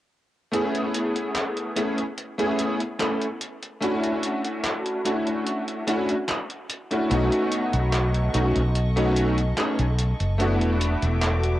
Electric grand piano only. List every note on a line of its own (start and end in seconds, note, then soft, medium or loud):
0.51 1.71 A3 medium
0.51 1.71 B3 medium
0.51 1.72 C#4 medium
0.51 1.72 E4 medium
0.51 1.73 G#4 medium
1.76 2.01 A3 medium
1.76 2.02 B3 medium
1.76 2.02 C#4 medium
1.76 2.02 E4 medium
1.76 2.02 G#4 medium
2.38 2.78 A3 medium
2.38 2.78 B3 medium
2.38 2.78 C#4 medium
2.38 2.78 E4 medium
2.38 2.79 G#4 loud
2.99 3.25 A3 medium
2.99 3.25 B3 medium
2.99 3.25 C#4 medium
2.99 3.25 E4 medium
2.99 3.25 A4 medium
3.81 5.00 A3 medium
3.81 5.00 C#4 medium
3.81 5.01 D4 medium
3.81 5.01 E4 medium
3.81 5.01 F#4 medium
5.05 5.83 A3 medium
5.05 5.83 C#4 medium
5.05 5.83 D4 medium
5.05 5.83 E4 medium
5.05 5.83 F#4 medium
5.87 6.13 A3 medium
5.87 6.13 C#4 medium
5.87 6.13 D4 medium
5.87 6.13 E4 medium
5.87 6.13 F#4 loud
6.91 7.08 A3 medium
6.91 7.08 C#4 medium
6.91 7.08 D4 medium
6.91 7.08 E4 medium
6.91 7.08 F#4 medium
7.10 8.29 A3 medium
7.10 8.29 B3 medium
7.10 8.30 C#4 medium
7.10 8.30 D#4 medium
7.10 8.30 F#4 loud
8.33 8.59 A3 medium
8.33 8.59 B3 medium
8.33 8.59 C#4 medium
8.33 8.60 D#4 medium
8.33 8.60 F#4 medium
8.96 9.35 A3 loud
8.96 9.36 B3 medium
8.96 9.36 C#4 medium
8.96 9.36 D#4 medium
8.96 9.36 F#4 loud
9.57 9.82 A3 medium
9.57 9.83 B3 medium
9.57 9.83 C#4 medium
9.57 9.83 D#4 medium
9.57 9.83 G#4 medium
10.38 11.57 A3 medium
10.38 11.58 B3 medium
10.38 11.58 D4 medium
10.38 11.59 E4 medium
10.38 11.59 F#4 medium